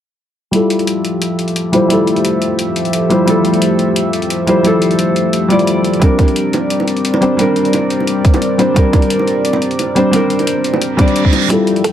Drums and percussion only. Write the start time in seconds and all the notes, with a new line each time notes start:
0.53 closed hi-hat
0.70 closed hi-hat
0.79 closed hi-hat
0.87 closed hi-hat
1.05 closed hi-hat
1.22 closed hi-hat
1.39 closed hi-hat
1.48 closed hi-hat
1.56 closed hi-hat
1.73 closed hi-hat
1.90 closed hi-hat
2.07 closed hi-hat
2.16 closed hi-hat
2.25 closed hi-hat
2.42 closed hi-hat
2.59 closed hi-hat
2.76 closed hi-hat
2.85 closed hi-hat
2.93 closed hi-hat
3.10 closed hi-hat
3.28 closed hi-hat
3.45 closed hi-hat
3.54 closed hi-hat
3.62 closed hi-hat
3.79 closed hi-hat
3.96 closed hi-hat
4.13 closed hi-hat
4.22 closed hi-hat
4.30 closed hi-hat
4.47 closed hi-hat
4.65 closed hi-hat
4.82 closed hi-hat
4.91 closed hi-hat
4.99 closed hi-hat
5.16 closed hi-hat
5.33 closed hi-hat
5.50 closed hi-hat
5.59 closed hi-hat
5.67 closed hi-hat
5.84 closed hi-hat
5.93 closed hi-hat
6.02 kick, closed hi-hat
6.19 kick, closed hi-hat, high bongo
6.28 closed hi-hat
6.36 closed hi-hat
6.53 closed hi-hat, high bongo
6.70 closed hi-hat
6.80 high bongo
6.88 closed hi-hat
6.97 closed hi-hat
7.05 closed hi-hat
7.14 high bongo
7.22 closed hi-hat
7.39 closed hi-hat, high bongo
7.56 closed hi-hat
7.65 closed hi-hat
7.73 closed hi-hat, high bongo
7.90 closed hi-hat
8.00 high bongo
8.07 closed hi-hat
8.25 kick, closed hi-hat
8.34 closed hi-hat, high bongo
8.42 closed hi-hat
8.59 closed hi-hat, high bongo
8.76 kick, closed hi-hat
8.93 kick, closed hi-hat, high bongo
9.02 closed hi-hat
9.10 closed hi-hat
9.19 high bongo
9.28 closed hi-hat
9.45 closed hi-hat
9.53 high bongo
9.62 closed hi-hat
9.71 closed hi-hat
9.79 closed hi-hat, high bongo
9.96 closed hi-hat
10.13 closed hi-hat, high bongo
10.30 closed hi-hat
10.39 closed hi-hat, high bongo
10.47 closed hi-hat
10.64 closed hi-hat
10.74 high bongo
10.82 closed hi-hat
10.99 kick, closed hi-hat, high bongo
11.08 closed hi-hat
11.16 closed hi-hat
11.25 kick
11.33 closed hi-hat, high bongo
11.42 closed hi-hat
11.50 kick, closed hi-hat
11.67 closed hi-hat
11.76 closed hi-hat
11.84 kick, closed hi-hat